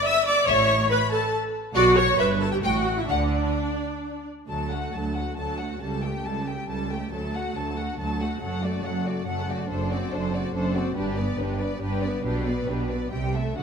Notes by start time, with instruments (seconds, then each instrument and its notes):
0.04 viola section E5, violin section E6
0.26 viola section D5, violin section D6
0.47 double bass section A1, cello section A2, viola section C#5, violin section E5 C#6
0.89 viola section B4, violin section B5
1.12 viola section A4, violin section A5
1.74 double bass section B1, cello section B2, viola section F#4, violin section D5 F#5
1.96 viola section C#5, violin section C#6
2.18 double bass section G1, cello section G2, viola section B4, violin section E5 B5
2.40 viola section A4, violin section A5
2.51 viola section G4, violin section G5
2.63 double bass section A1, cello section A2, viola section F#4, violin section F#5 G5
2.97 viola section E4, violin section E5
3.08 double bass section D2, cello section D3, viola section D4, violin section D5 F#5
4.48 double bass section D2, cello section D2, viola section F#3, violin section A4 A5
4.70 viola section A3, violin section F#4 F#5
4.93 double bass section D2, cello section D2, viola section F#3, violin section A4 A5
5.15 viola section A3, violin section F#4 F#5
5.37 double bass section D2, cello section D2, viola section F#3, violin section A4 A5
5.59 viola section A3, violin section F#4 F#5
5.80 cello section C#2, double bass section C#2, viola section G3, violin section A4 A5
6.03 viola section A3, violin section G4 G5
6.24 cello section C#2, double bass section C#2, viola section G3, violin section A4 A5
6.46 viola section A3, violin section G4 G5
6.67 cello section C#2, double bass section C#2, viola section G3, violin section A4 A5
6.90 viola section A3, violin section G4 G5
7.11 cello section D2, double bass section D2, viola section F#3, violin section A4 A5
7.34 viola section A3, violin section F#4 F#5
7.55 cello section D2, double bass section D2, viola section F#3, violin section A4 A5
7.77 viola section A3, violin section F#4 F#5
7.98 cello section D2, double bass section D2, viola section F#3, violin section A4 A5
8.20 viola section A3, violin section F#4 F#5
8.42 double bass section F#1, cello section F#2, viola section F#3, violin section A4 F#5
8.63 viola section A3, violin section F#4 D5
8.84 double bass section F#1, cello section F#2, viola section F#3, violin section A4 F#5
9.05 viola section A3, violin section F#4 D5
9.27 double bass section F#1, cello section F#2, viola section F#3, violin section A4 F#5
9.49 viola section A3, violin section F#4 D5
9.69 double bass section F#1, cello section F#2, viola section D4, violin section A4 C5
9.91 viola section C4, violin section F#4 D5
10.12 double bass section F#1, cello section F#2, viola section D4, violin section A4 C5
10.33 viola section C4, violin section F#4 D5
10.53 double bass section F#1, cello section F#2, viola section D4, violin section A4 C5
10.74 viola section C4, violin section F#4 D5
10.96 double bass section G1, cello section G2, viola section D4, violin section G4 B4
11.17 viola section B3, violin section B4 D5
11.38 double bass section G1, cello section G2, viola section D4, violin section G4 B4
11.59 viola section B3, violin section B4 D5
11.81 double bass section G1, cello section G2, viola section D4, violin section G4 B4
12.03 viola section B3, violin section B4 D5
12.24 double bass section B1, cello section B2, viola section D4, violin section G4 B4
12.46 viola section B3, violin section B4 D5
12.67 double bass section B1, cello section B2, viola section D4, violin section G4 B4
12.88 viola section B3, violin section B4 D5
13.11 double bass section C2, cello section C3, viola section G3, violin section G4 G5
13.33 viola section A3, violin section A4 E5
13.57 double bass section D2, cello section D3, viola section F#3, violin section F#4 F#5